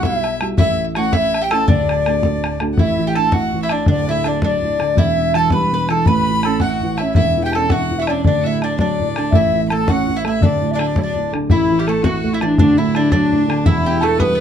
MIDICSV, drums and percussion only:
0, 0, Header, 1, 2, 480
1, 0, Start_track
1, 0, Key_signature, 2, "major"
1, 0, Tempo, 365186
1, 766, Time_signature, 6, 3, 24, 8
1, 9883, Tempo, 361228
1, 19032, End_track
2, 0, Start_track
2, 0, Title_t, "Bodhran"
2, 40, Note_on_c, 9, 64, 91
2, 171, Note_off_c, 9, 64, 0
2, 314, Note_on_c, 9, 64, 62
2, 446, Note_off_c, 9, 64, 0
2, 535, Note_on_c, 9, 64, 77
2, 666, Note_off_c, 9, 64, 0
2, 760, Note_on_c, 9, 64, 101
2, 891, Note_off_c, 9, 64, 0
2, 1253, Note_on_c, 9, 64, 71
2, 1384, Note_off_c, 9, 64, 0
2, 1483, Note_on_c, 9, 64, 97
2, 1614, Note_off_c, 9, 64, 0
2, 1767, Note_on_c, 9, 64, 60
2, 1898, Note_off_c, 9, 64, 0
2, 1986, Note_on_c, 9, 64, 77
2, 2117, Note_off_c, 9, 64, 0
2, 2209, Note_on_c, 9, 64, 102
2, 2340, Note_off_c, 9, 64, 0
2, 2488, Note_on_c, 9, 64, 65
2, 2619, Note_off_c, 9, 64, 0
2, 2711, Note_on_c, 9, 64, 66
2, 2843, Note_off_c, 9, 64, 0
2, 2932, Note_on_c, 9, 64, 81
2, 3064, Note_off_c, 9, 64, 0
2, 3205, Note_on_c, 9, 64, 64
2, 3336, Note_off_c, 9, 64, 0
2, 3420, Note_on_c, 9, 64, 65
2, 3551, Note_off_c, 9, 64, 0
2, 3648, Note_on_c, 9, 64, 88
2, 3780, Note_off_c, 9, 64, 0
2, 4146, Note_on_c, 9, 64, 56
2, 4277, Note_off_c, 9, 64, 0
2, 4365, Note_on_c, 9, 64, 89
2, 4496, Note_off_c, 9, 64, 0
2, 4636, Note_on_c, 9, 64, 20
2, 4767, Note_off_c, 9, 64, 0
2, 4855, Note_on_c, 9, 64, 66
2, 4987, Note_off_c, 9, 64, 0
2, 5078, Note_on_c, 9, 64, 90
2, 5209, Note_off_c, 9, 64, 0
2, 5578, Note_on_c, 9, 64, 60
2, 5709, Note_off_c, 9, 64, 0
2, 5808, Note_on_c, 9, 64, 93
2, 5940, Note_off_c, 9, 64, 0
2, 6079, Note_on_c, 9, 64, 22
2, 6211, Note_off_c, 9, 64, 0
2, 6306, Note_on_c, 9, 64, 69
2, 6438, Note_off_c, 9, 64, 0
2, 6537, Note_on_c, 9, 64, 86
2, 6668, Note_off_c, 9, 64, 0
2, 7023, Note_on_c, 9, 64, 65
2, 7154, Note_off_c, 9, 64, 0
2, 7234, Note_on_c, 9, 64, 88
2, 7365, Note_off_c, 9, 64, 0
2, 7516, Note_on_c, 9, 64, 21
2, 7647, Note_off_c, 9, 64, 0
2, 7738, Note_on_c, 9, 64, 73
2, 7870, Note_off_c, 9, 64, 0
2, 7963, Note_on_c, 9, 64, 86
2, 8095, Note_off_c, 9, 64, 0
2, 8454, Note_on_c, 9, 64, 67
2, 8586, Note_off_c, 9, 64, 0
2, 8673, Note_on_c, 9, 64, 81
2, 8804, Note_off_c, 9, 64, 0
2, 8945, Note_on_c, 9, 64, 25
2, 9076, Note_off_c, 9, 64, 0
2, 9171, Note_on_c, 9, 64, 60
2, 9302, Note_off_c, 9, 64, 0
2, 9396, Note_on_c, 9, 64, 93
2, 9528, Note_off_c, 9, 64, 0
2, 9901, Note_on_c, 9, 64, 61
2, 10034, Note_off_c, 9, 64, 0
2, 10123, Note_on_c, 9, 64, 91
2, 10256, Note_off_c, 9, 64, 0
2, 10399, Note_on_c, 9, 64, 22
2, 10532, Note_off_c, 9, 64, 0
2, 10620, Note_on_c, 9, 64, 71
2, 10752, Note_off_c, 9, 64, 0
2, 10848, Note_on_c, 9, 64, 85
2, 10981, Note_off_c, 9, 64, 0
2, 11346, Note_on_c, 9, 64, 64
2, 11479, Note_off_c, 9, 64, 0
2, 11567, Note_on_c, 9, 64, 82
2, 11700, Note_off_c, 9, 64, 0
2, 11841, Note_on_c, 9, 64, 26
2, 11974, Note_off_c, 9, 64, 0
2, 12064, Note_on_c, 9, 64, 70
2, 12197, Note_off_c, 9, 64, 0
2, 12283, Note_on_c, 9, 64, 104
2, 12416, Note_off_c, 9, 64, 0
2, 12787, Note_on_c, 9, 64, 70
2, 12920, Note_off_c, 9, 64, 0
2, 13018, Note_on_c, 9, 64, 94
2, 13151, Note_off_c, 9, 64, 0
2, 13287, Note_on_c, 9, 64, 24
2, 13420, Note_off_c, 9, 64, 0
2, 13509, Note_on_c, 9, 64, 63
2, 13642, Note_off_c, 9, 64, 0
2, 13742, Note_on_c, 9, 64, 99
2, 13874, Note_off_c, 9, 64, 0
2, 14233, Note_on_c, 9, 64, 63
2, 14366, Note_off_c, 9, 64, 0
2, 14454, Note_on_c, 9, 64, 86
2, 14587, Note_off_c, 9, 64, 0
2, 14721, Note_on_c, 9, 64, 19
2, 14854, Note_off_c, 9, 64, 0
2, 14955, Note_on_c, 9, 64, 58
2, 15088, Note_off_c, 9, 64, 0
2, 15169, Note_on_c, 9, 64, 86
2, 15302, Note_off_c, 9, 64, 0
2, 15674, Note_on_c, 9, 64, 63
2, 15807, Note_off_c, 9, 64, 0
2, 15891, Note_on_c, 9, 64, 96
2, 16023, Note_off_c, 9, 64, 0
2, 16164, Note_on_c, 9, 64, 24
2, 16297, Note_off_c, 9, 64, 0
2, 16385, Note_on_c, 9, 64, 63
2, 16518, Note_off_c, 9, 64, 0
2, 16612, Note_on_c, 9, 64, 98
2, 16745, Note_off_c, 9, 64, 0
2, 17098, Note_on_c, 9, 64, 63
2, 17231, Note_off_c, 9, 64, 0
2, 17322, Note_on_c, 9, 64, 89
2, 17455, Note_off_c, 9, 64, 0
2, 17592, Note_on_c, 9, 64, 22
2, 17725, Note_off_c, 9, 64, 0
2, 17829, Note_on_c, 9, 64, 71
2, 17961, Note_off_c, 9, 64, 0
2, 18040, Note_on_c, 9, 64, 91
2, 18173, Note_off_c, 9, 64, 0
2, 18538, Note_on_c, 9, 64, 59
2, 18671, Note_off_c, 9, 64, 0
2, 18757, Note_on_c, 9, 64, 94
2, 18890, Note_off_c, 9, 64, 0
2, 19032, End_track
0, 0, End_of_file